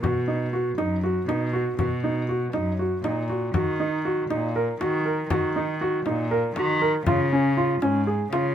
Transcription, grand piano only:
0.03 F#4
0.28 D#4
0.53 F#4
0.78 D#4
1.04 F#4
1.28 D#4
1.53 F#4
1.79 F#4
2.04 D#4
2.29 F#4
2.54 D#4
2.79 F#4
3.04 D#4
3.30 F#4
3.55 F#4
3.80 D#4
4.05 F#4
4.30 D#4
4.56 A#4
4.81 F#4
5.06 A#4
5.31 F#4
5.56 D#4
5.81 F#4
6.06 D#4
6.31 A#4
6.57 F#4
6.82 A#4
7.07 F4
7.33 C#4
7.57 F4
7.82 C#4
8.07 G#4
8.33 F4

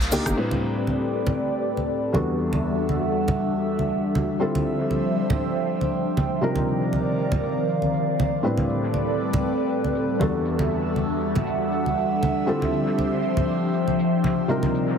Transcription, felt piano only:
Already playing: D#4 G4
0.12 A#3 D4 D#4 G4
0.36 A2 G3 C4 D4 E4 B4
2.13 E2 G3 B3 D4 F#4 A4
4.40 D3 G3 C4 E4 F4 A4
6.41 C3 G3 D4 D#4 F4 A#4
8.43 A2 G3 C4 D4 E4 B4
10.19 E2 G3 B3 D4 F#4 A4
12.46 D3 G3 C4 E4 F4 A4
14.48 C3 G3 D4 D#4 F4 A#4

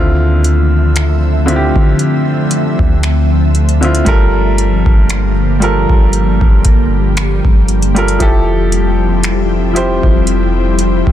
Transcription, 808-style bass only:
Already playing: D2
1.76 D3
2.79 D2
4.07 G1
4.86 G1
5.90 G1
6.42 G1
7.45 G1
8.20 F1
10.04 F1
11.07 F1

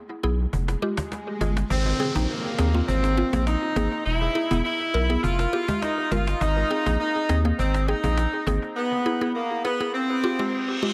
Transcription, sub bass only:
0.24 B1
0.53 F1
1.41 G1
1.70 G#1
2.16 A#1
2.59 D#2
2.88 G#1
3.33 A#1
3.76 G#1
4.06 E1
4.51 E1
4.94 B1
5.24 F1
6.11 G1
6.41 G#1
6.86 A#1
7.29 D#2
7.59 G#1
8.04 A#1
8.47 G#1

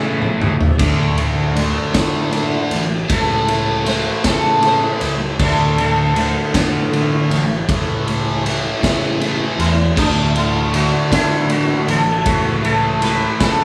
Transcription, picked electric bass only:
Already playing: C#3
0.40 C#2
0.80 D2
1.94 D3
2.71 A1
3.09 C#2
4.25 C#3
5.01 C#2
5.39 D2
6.55 D3
7.30 A1
7.68 C#2
8.83 C#3
9.58 E2
9.98 D2
11.12 D3
11.88 A1
12.26 C#2
13.40 C#3

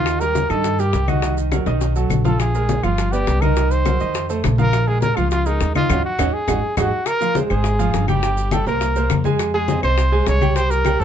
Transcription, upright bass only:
Already playing: D#2
0.50 G2
0.93 C2
1.66 B1
2.11 A#1
2.84 G1
3.28 C2
4.01 F2
4.44 A#1
5.17 C#2
5.61 D#2
5.90 D#2
6.19 D#2
6.48 G#1
6.77 G#1
7.50 G#1
7.94 G1
8.67 C2
9.10 F2
9.83 C2
10.27 C2
11.00 F2

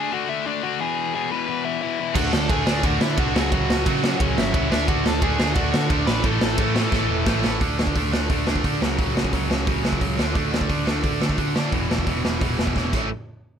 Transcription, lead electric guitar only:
Already playing: G#5
0.12 F#4 F#5
0.29 E4 E5
0.46 D4 D5
0.63 F#4 F#5
0.81 G#4 G#5
1.14 G#4 G#5
1.31 B4 B5
1.65 E4 E5
1.82 E4 E5
2.15 F#4 F#5
2.33 A4 A5
2.50 G#4 G#5
2.84 F#4 F#5
3.02 E4 E5
3.19 F#4 F#5
3.53 F#4 F#5
4.21 C#4 C#5
4.38 E4 E5
4.55 E4 E5
4.72 E4 E5
4.89 F#4 F#5
5.06 A4 A5
5.23 G#4 G#5
5.55 F#4 F#5
6.07 B4 B5
6.25 A4 A5

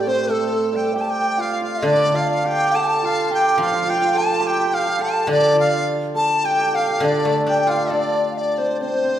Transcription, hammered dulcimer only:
Already playing: G3 A3 D4
0.07 C4
0.29 A3
0.73 G3
0.95 G4
1.38 F4
1.62 F4
1.84 D4
2.13 F4
2.44 G4
2.74 A4
3.03 F4
3.31 G4
3.59 F4
3.66 F4
3.73 F4
3.81 F4
3.88 F4
3.95 F4
4.02 F4
4.14 A4
4.41 G4
4.50 G4
4.58 G4
4.65 G4
4.73 G4
4.79 G4
4.86 G4
4.99 A4
5.28 D4
5.56 F4
6.15 A4
6.44 G4
6.51 G4
6.58 G4
6.65 G4
6.73 G4
6.79 G4
6.88 G4
6.97 F4
7.03 D4
7.48 G4
7.71 F4
7.92 D4
8.58 C4
8.81 C4
8.88 C4
8.95 C4
9.04 C4
9.09 C4

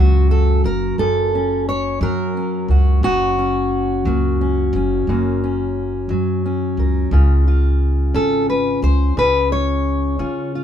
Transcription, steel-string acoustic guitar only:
Already playing: F#2 A#3 F#4
0.00 F#3
0.31 A4
0.65 A#4
0.99 F#2 A4
1.35 C#4
1.69 C#5
2.03 F#3 A#4
2.37 C#4
2.70 F#4
3.03 F#2 F#4
3.39 C#4
4.06 F#3 A#3
4.41 C#4
4.76 C#4
5.09 F#2 A#3
5.44 C#4
6.10 F#3
6.45 C#4
6.79 A#4
7.12 C#3 F4
7.48 F4
8.14 C#4 A4
8.50 B4
8.84 C5
9.17 C#3 B4
9.52 C#5
10.19 C#4 F4
10.55 F4

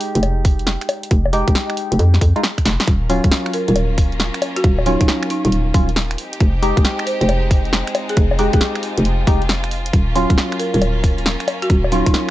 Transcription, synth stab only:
Already playing: G#3 D#4 G4
1.33 G#3 D#4 G4
2.36 G#3 D#4 F4
3.10 F#3 C#4 F4
4.86 F#3 C#4 F4
5.74 F#3 C#4 F4
6.62 G#3 D#4 G4
8.39 G#3 D#4 G4
9.27 G#3 D#4 G4
10.15 F#3 C#4 F4
11.92 F#3 C#4 F4

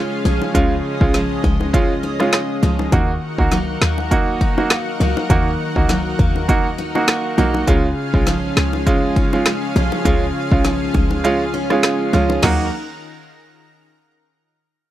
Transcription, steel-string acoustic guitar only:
Already playing: C#3 F3 G#3 C#4
0.25 F3 G#3 C#4
0.55 C#3
1.14 F3 G#3 C#4
1.44 G#3
2.03 C#4
2.33 G#3
2.63 F3 G#3 C#4
2.92 D#3
3.52 F#3 A#3 D#4
3.82 A#3
4.41 D#4
4.71 A#3
5.00 F#3 A#3 D#4
5.30 D#3
5.89 F#3 A#3 D#4
6.19 A#3
6.78 D#4
7.08 A#3
7.38 F#3 A#3 D#4
7.68 C#3
8.27 F3 G#3 C#4
8.57 G#3
9.16 C#4
9.46 G#3
9.76 F3 G#3 C#4
10.05 C#3
10.65 F3 G#3 C#4
10.95 G#3
11.54 C#4
11.84 G#3
12.13 F3 G#3 C#4
12.42 D#3 F#3 A#3 D#4

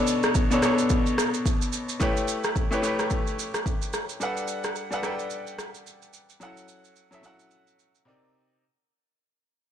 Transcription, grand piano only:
Already playing: B2 B3 D4 A4 C#5
0.50 B2 B3 D4 A4 C#5
0.62 B2 B3 D4 A4 C#5
2.00 A3 E4 G4 B4 C#5
2.71 A3 E4 G4 B4 C#5
2.82 A3 E4 G4 B4 C#5
4.20 G3 D4 A4 B4 F#5
4.90 G3 D4 A4 B4 F#5
5.02 G3 D4 A4 B4 G5
6.40 F#3 C#4 E4 A4 F#5
7.11 F#3 C#4 E4 A4 E5
7.22 F#3 C#4 E4 A4 F#5
8.05 C3 C4 D#4 A#4 D5

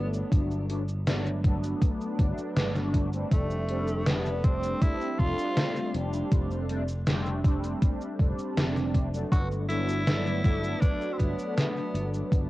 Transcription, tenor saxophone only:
3.33 A3
4.08 B3
4.45 C4
4.82 E4
5.19 F4
9.32 F#4
9.68 E4
10.81 D4
11.13 C4
11.18 B3
11.56 B3

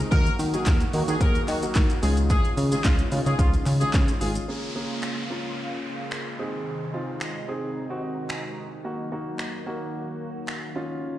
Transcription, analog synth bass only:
0.12 D#2
0.39 D#3
0.67 D#2
0.94 D#3
1.08 D#3
1.21 D#2
1.48 D#3
1.76 D#3
2.03 C#2
2.57 C#3
2.85 C#2
3.12 C#3
3.26 C#3
3.39 C#2
3.66 C#3
3.94 C#3
4.21 G#1

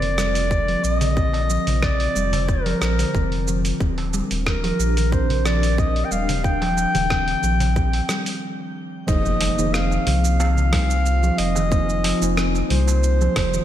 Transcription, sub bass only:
Already playing: F1
0.84 A#1
1.67 A#1
2.16 F1
2.82 A#1
3.15 F1
3.81 D#1
4.31 D#1
4.79 A#1
6.11 D#1
6.95 D#1
7.43 A#1
9.08 F1
9.58 F1
10.07 C2
11.39 F1
12.22 F1
12.71 C2
13.37 F1

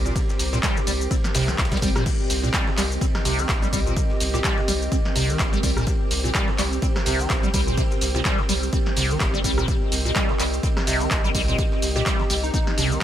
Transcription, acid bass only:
0.05 A#2
0.16 C3
0.53 A#2
0.63 G3
0.77 A#2
0.87 G3
1.11 C4
1.35 C3
1.48 D#3
1.72 G3
1.82 G3
1.96 A#2
2.06 C3
2.43 A#2
2.54 G3
2.67 A#2
2.77 G3
3.01 C4
3.25 C3
3.38 D#3
3.62 G3
3.73 G3
3.86 A#2
3.97 C3
4.34 A#2
4.44 G3
4.58 A#2
4.68 G3
4.92 C4
5.16 C3
5.29 D#3
5.53 G3
5.63 G3
5.77 A#2
5.87 C3
6.24 A#2
6.35 G3
6.48 A#2
6.58 G3
6.82 C4
7.06 C3
7.19 D#3
7.43 G3
7.54 G3
7.67 A#2
7.78 C3
8.15 A#2
8.25 G3
8.38 A#2
8.49 G3
8.73 C4
8.97 C3
9.10 D#3
9.34 G3
9.44 G3
9.58 A#2
9.68 C3
10.05 A#2
10.16 G3
10.29 A#2
10.40 G3
10.63 C4
10.87 C3
11.01 D#3
11.24 G3
11.35 G3
11.48 A#2
11.59 C3
11.96 A#2
12.06 G3
12.20 A#2
12.30 G3
12.54 C4
12.78 C3
12.91 D#3

